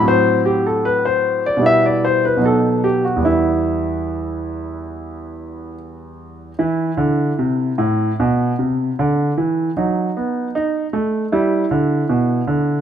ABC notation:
X:1
M:4/4
L:1/16
Q:1/4=76
K:Em
V:1 name="Grand piano"
c2 G A B c2 d e d c B A2 G F | E12- E2 z2 | E16 | ^D8 E8 |]
V:2 name="Grand piano" clef=bass
[A,,F,CF]8 [B,,G,B,E]4 [B,,F,B,^D]4 | [E,,G,B,]16 | E,2 D,2 C,2 A,,2 B,,2 C,2 D,2 E,2 | F,2 B,2 ^D2 A,2 G,2 =D,2 B,,2 D,2 |]